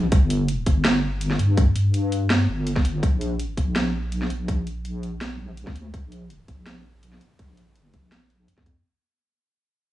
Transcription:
Already playing: wobble bass A#1
0.12 wobble bass G1, kick, closed hi-hat
0.30 closed hi-hat
0.48 closed hi-hat
0.66 wobble bass G1, kick, closed hi-hat
0.85 snare, closed hi-hat
1.21 closed hi-hat
1.31 snare
1.39 wobble bass G2, closed hi-hat
1.57 kick, closed hi-hat
1.75 wobble bass G2, closed hi-hat
1.94 closed hi-hat
2.12 closed hi-hat
2.30 snare
2.48 wobble bass G1
2.67 closed hi-hat
2.76 kick, snare
2.85 closed hi-hat
3.03 wobble bass A#1, kick, closed hi-hat
3.21 closed hi-hat
3.39 closed hi-hat
3.57 wobble bass A#1, kick, closed hi-hat
3.76 snare, closed hi-hat
4.12 closed hi-hat
4.22 snare
4.30 wobble bass A#1, closed hi-hat
4.48 kick, closed hi-hat
4.67 closed hi-hat
4.85 closed hi-hat
5.03 closed hi-hat
5.21 snare, closed hi-hat
5.39 wobble bass A#1
5.57 closed hi-hat
5.67 kick, snare
5.76 wobble bass D2, closed hi-hat
5.94 wobble bass A#1, kick, closed hi-hat
6.12 closed hi-hat
6.30 closed hi-hat
6.48 wobble bass A#1, kick, closed hi-hat
6.66 snare, closed hi-hat
7.03 closed hi-hat
7.12 snare
7.21 closed hi-hat
7.39 wobble bass A#1, kick, closed hi-hat
7.57 closed hi-hat
7.76 closed hi-hat
7.94 wobble bass A#1, kick, closed hi-hat
8.12 snare, closed hi-hat
8.30 closed hi-hat
8.48 wobble bass F2, closed hi-hat
8.58 kick, snare
8.66 kick, closed hi-hat

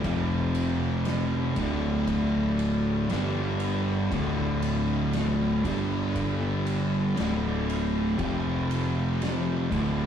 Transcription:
0.04 fingered electric bass F1, distorted electric guitar F2 C3 F3, kick, ride
0.55 ride
1.05 snare, ride
1.56 fingered electric bass D1, distorted electric guitar D2 A2 D3, kick, ride
2.07 kick, ride
2.59 ride
3.10 fingered electric bass G1, distorted electric guitar G2 D3 G3, snare, ride
3.60 ride
4.12 fingered electric bass D1, distorted electric guitar D2 A2 D3, kick, ride
4.62 ride
5.13 snare, ride
5.65 fingered electric bass G1, distorted electric guitar G2 D3 G3, kick, ride
6.15 kick, ride
6.67 ride
7.16 fingered electric bass D1, distorted electric guitar D2 A2 D3, snare, ride
7.70 ride
8.18 fingered electric bass F1, distorted electric guitar F2 C3 F3, kick, ride
8.71 ride
9.22 snare, ride
9.71 fingered electric bass D1, distorted electric guitar D2 A2 D3, kick, ride

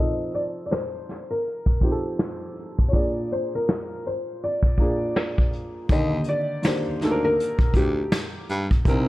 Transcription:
Already playing: upright piano F3 C4 A#4, felt piano D#5
0.00 upright piano D#4 A4
0.32 felt piano D5, closed hi-hat
0.66 felt piano D5
0.70 felt piano C5, snare, closed hi-hat
1.09 snare, closed hi-hat
1.31 felt piano A#4
1.47 closed hi-hat
1.66 kick
1.81 upright piano F3 C4 D#4 G4, felt piano G4, kick, closed hi-hat
1.92 upright piano A4
2.19 snare
2.57 closed hi-hat
2.79 kick
2.88 upright piano A#2, felt piano C#5
2.93 upright piano A#3 D4 G#4, felt piano D5, kick, closed hi-hat
3.29 felt piano C5, closed hi-hat
3.55 felt piano A#4
3.67 snare, closed hi-hat
4.05 felt piano C5, closed hi-hat
4.44 felt piano D5, closed hi-hat
4.63 kick
4.78 upright piano A#2 A#3 D4 G#4, kick, closed hi-hat
5.16 snare, closed hi-hat
5.38 kick
5.53 closed hi-hat
5.89 baritone saxophone D#2, upright piano D3 D#3 A#3 G4, felt piano D#5, kick, closed hi-hat
6.24 closed hi-hat
6.29 felt piano D5
6.62 upright piano D#3 A#3 D4 G4, felt piano C5, snare, closed hi-hat
6.87 baritone saxophone D2
7.01 baritone saxophone D2, upright piano A#3 D4 D#4 A4, snare, closed hi-hat
7.11 upright piano A#4
7.25 felt piano A#4
7.40 closed hi-hat
7.59 baritone saxophone D2, kick
7.74 baritone saxophone D2, felt piano G4, kick, closed hi-hat
8.12 snare, closed hi-hat
8.49 baritone saxophone G2, closed hi-hat
8.71 kick
8.85 baritone saxophone C2, upright piano C3 C4 D4 A#4, kick, closed hi-hat
8.94 upright piano D#4

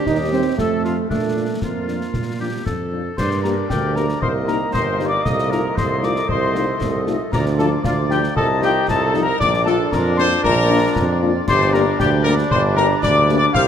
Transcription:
Already playing: woodwind section G4
0.06 tuba D#2, euphonium D#4, trumpet section D#5, concert bass drum, snare
0.32 french horn section G3 C4, euphonium C4, trumpet section C5
0.58 tuba F2, euphonium A3, woodwind section A4, trumpet section A4, concert bass drum, snare
0.84 french horn section F3 C4 F4, woodwind section F4, snare
1.09 tuba A#2, euphonium A3, woodwind section D4, trumpet section A4, concert bass drum, snare
1.36 french horn section F3 D4 F4
1.60 tuba F2, euphonium A#3, woodwind section F4, trumpet section A#4, concert bass drum, snare
1.88 french horn section F3 D4 F4, snare
2.01 snare
2.14 tuba A#2, concert bass drum, snare
2.40 french horn section F3 D4 F4, woodwind section G4
2.66 tuba F2, woodwind section A4, concert bass drum, snare
2.92 french horn section F3 D4 F4
3.17 tuba G2, trombone section D3 D4, woodwind section A#4 D5, trumpet section C5, piccolo C6, concert bass drum, snare, crash
3.31 snare
3.43 french horn section A#3 D4 G4, trumpet section A#4, piccolo A#5, snare
3.69 tuba D2, trumpet section G4, woodwind section A#4 D5, piccolo G5, concert bass drum, snare
3.96 french horn section A#3 D4 G4, trumpet section A#4, piccolo A#5, snare
4.09 snare
4.21 tuba C2, trombone section D#3 A#3, woodwind section A#4 D#5, trumpet section C5, piccolo C6, concert bass drum
4.47 french horn section A#3 D#4 G4, trumpet section A#4, piccolo A#5, snare
4.72 tuba G1, woodwind section A#4 D#5, trumpet section C5, piccolo C6, concert bass drum, snare
4.99 french horn section A#3 D#4 G4, snare
5.07 trumpet section D5, piccolo D6
5.23 tuba C2, trombone section F3, woodwind section A4 D#5, trumpet section D#5, piccolo D#6, concert bass drum, snare
5.39 snare
5.50 french horn section A3 D#4 F4, trumpet section A#4, piccolo A#5, snare
5.75 tuba C2, woodwind section A4 D#5, trumpet section C5, piccolo C6, concert bass drum, snare
6.01 french horn section A3 D#4 F4, trumpet section D5, piccolo D6, snare
6.16 snare
6.28 tuba C2, trombone section A3, woodwind section A4 D#5, trumpet section C5, piccolo C6, concert bass drum
6.55 french horn section A3 D#4 F4, snare
6.81 tuba C2, concert bass drum, snare
7.06 french horn section A3 D#4 F4, snare
7.32 tuba D2, trombone section F3 A#3, woodwind section F4 D5, trumpet section A#4, piccolo A#5, concert bass drum, snare, crash
7.46 snare
7.58 french horn section F3 D4 F4, trumpet section A4, piccolo A5, snare
7.84 tuba D2, trumpet section F4, woodwind section F4 D5, piccolo F5, concert bass drum, snare
8.10 french horn section F3 D4 F4, trumpet section G4, piccolo G5, snare
8.24 snare
8.36 tuba C2, trombone section D#4, woodwind section F4 D#5, trumpet section A4, piccolo A5, concert bass drum
8.62 french horn section F3 D#4 F4, trumpet section G4, piccolo G5, snare
8.88 tuba C2, woodwind section F4 D#5, trumpet section A4, piccolo A5, concert bass drum, snare
9.14 french horn section F3 D#4 F4, snare
9.22 trumpet section A#4, piccolo A#5
9.39 tuba A#1, trombone section F3 D4, woodwind section F4 D5, trumpet section D5, piccolo D6, concert bass drum, snare
9.54 snare
9.64 french horn section A#3 D4 F4, trumpet section A4, piccolo A5, snare
9.91 tuba F2, woodwind section F4 D5, trumpet section A#4, piccolo A#5, concert bass drum, snare
10.17 french horn section A#3 D4 F4, trumpet section C5, piccolo C6, snare
10.32 snare
10.44 tuba A#1, woodwind section F4 D5, trumpet section A#4, piccolo A#5, concert bass drum, snare
10.70 french horn section A#3 D4 F4
10.96 tuba F2, concert bass drum, snare
11.22 french horn section A#3 D4 F4
11.48 tuba G1, trombone section G3 D4, woodwind section G4 D5, trumpet section C5, piccolo C6, concert bass drum, snare, crash
11.61 snare
11.73 french horn section A#3 D4 G4, trumpet section A#4, piccolo A#5, snare
11.98 tuba D2, trumpet section G4, woodwind section G4 D5, piccolo G5, concert bass drum, snare
12.23 french horn section A#3 D4 G4, trumpet section A#4, piccolo A#5, snare
12.39 snare
12.50 tuba G1, trumpet section C5, piccolo C6, concert bass drum
12.75 french horn section A#3 D4 G4, trumpet section A#4, piccolo A#5, snare
13.01 tuba D2, woodwind section G4 D5, trumpet section D5, piccolo D6, concert bass drum, snare
13.28 french horn section A#3 D4 G4, snare
13.37 trumpet section D5, piccolo D6
13.54 tuba C2, trombone section G3 C4, woodwind section G4 C5, trumpet section F5, piccolo F6, concert bass drum, snare

